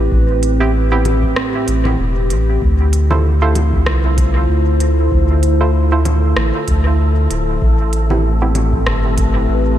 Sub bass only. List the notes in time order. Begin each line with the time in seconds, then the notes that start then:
0.12 A1
1.68 A1
1.99 E1
2.31 A1
2.62 D2
3.87 C2
4.49 D2
5.12 D2
6.37 A1
6.68 D2
7.31 D1
7.62 A1
8.87 G1
9.49 A1